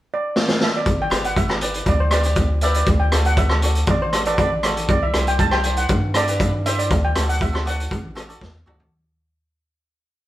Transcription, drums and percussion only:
0.36 snare medium
0.48 snare medium
0.61 snare medium
0.86 kick loud
0.86 closed hi-hat medium
1.11 cross-stick medium
1.11 closed hi-hat medium
1.24 closed hi-hat medium
1.36 kick medium
1.36 closed hi-hat medium
1.50 cross-stick medium
1.61 closed hi-hat medium
1.74 closed hi-hat medium
1.86 kick medium
1.86 closed hi-hat medium
2.11 cross-stick medium
2.11 closed hi-hat medium
2.23 closed hi-hat medium
2.36 kick medium
2.36 closed hi-hat medium
2.61 closed hi-hat medium
2.74 closed hi-hat medium
2.86 kick medium
2.86 closed hi-hat medium
3.12 cross-stick medium
3.12 closed hi-hat medium
3.25 closed hi-hat medium
3.37 kick medium
3.37 closed hi-hat medium
3.50 cross-stick medium
3.62 closed hi-hat medium
3.75 closed hi-hat medium
3.86 kick loud
3.86 closed hi-hat soft
4.13 cross-stick medium
4.13 closed hi-hat medium
4.25 closed hi-hat medium
4.38 kick medium
4.38 closed hi-hat medium
4.63 cross-stick medium
4.63 closed hi-hat medium
4.77 closed hi-hat medium
4.89 kick loud
4.89 closed hi-hat soft
5.14 cross-stick medium
5.14 closed hi-hat medium
5.27 closed hi-hat medium
5.39 kick medium
5.39 closed hi-hat medium
5.51 cross-stick medium
5.63 closed hi-hat medium
5.77 closed hi-hat medium
5.89 kick medium
5.89 closed hi-hat medium
6.14 cross-stick medium
6.14 closed hi-hat medium
6.27 closed hi-hat medium
6.40 kick medium
6.40 closed hi-hat medium
6.66 closed hi-hat medium
6.79 closed hi-hat medium
6.91 kick loud
6.91 closed hi-hat medium
7.16 cross-stick medium
7.16 closed hi-hat medium
7.29 closed hi-hat medium
7.41 kick medium
7.41 closed hi-hat medium
7.55 cross-stick medium
7.67 closed hi-hat medium
7.80 closed hi-hat medium
7.91 kick medium
7.91 closed hi-hat soft
8.17 cross-stick medium
8.17 closed hi-hat medium
8.30 closed hi-hat medium
8.41 kick medium
8.41 snare medium
8.67 mid tom medium
8.80 floor tom medium

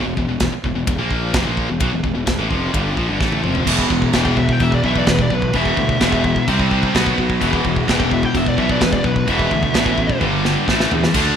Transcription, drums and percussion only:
0.17 kick medium
0.40 kick medium
0.40 snare medium
0.40 ride bell medium
0.64 kick medium
0.87 kick loud
0.87 ride bell medium
1.11 kick medium
1.34 kick loud
1.34 snare loud
1.34 ride bell medium
1.57 kick medium
1.80 kick loud
1.80 ride bell medium
2.04 kick medium
2.27 kick medium
2.27 snare medium
2.27 ride bell medium
2.51 kick medium
2.74 kick loud
2.74 ride bell medium
2.97 kick medium
3.21 kick loud
3.21 snare medium
3.32 high tom medium
3.44 mid tom medium
3.55 floor tom medium
3.67 kick medium
3.67 crash loud
3.67 crash medium
3.78 kick medium
3.90 kick medium
4.02 kick medium
4.13 kick medium
4.13 snare loud
4.13 crash medium
4.25 kick medium
4.37 kick medium
4.49 kick medium
4.60 kick medium
4.60 crash medium
4.72 kick medium
4.84 kick medium
4.95 kick medium
5.07 kick medium
5.07 snare loud
5.07 crash medium
5.19 kick loud
5.30 kick medium
5.42 kick medium
5.53 kick medium
5.53 crash medium
5.65 kick medium
5.77 kick medium
5.89 kick medium
6.00 kick medium
6.00 snare loud
6.00 crash medium
6.12 kick medium
6.24 kick medium
6.36 kick medium
6.48 kick loud
6.48 crash medium
6.59 kick medium
6.71 kick medium
6.83 kick medium
6.95 kick medium
6.95 snare loud
6.95 crash medium
7.06 kick medium
7.18 kick medium
7.30 kick medium
7.41 kick medium
7.41 crash medium
7.53 kick medium
7.65 kick medium
7.76 kick medium
7.88 kick medium
7.88 snare loud
7.88 crash medium
8.00 kick medium
8.11 kick medium
8.23 kick medium
8.35 kick medium
8.35 crash medium
8.46 kick medium
8.58 kick medium
8.69 kick loud
8.81 kick medium
8.81 snare loud
8.81 crash medium
8.93 kick loud
9.04 kick medium
9.16 kick medium
9.28 kick medium
9.28 crash medium
9.39 kick medium
9.51 kick medium
9.63 kick medium
9.74 kick medium
9.74 snare loud
9.74 crash medium
9.86 kick medium
9.98 kick medium
10.10 kick medium
10.21 kick medium
10.21 high tom medium
10.45 snare medium
10.68 kick medium
10.68 snare medium
10.80 snare medium
10.91 floor tom loud
11.04 snare loud
11.14 kick loud
11.14 crash loud
11.14 crash medium

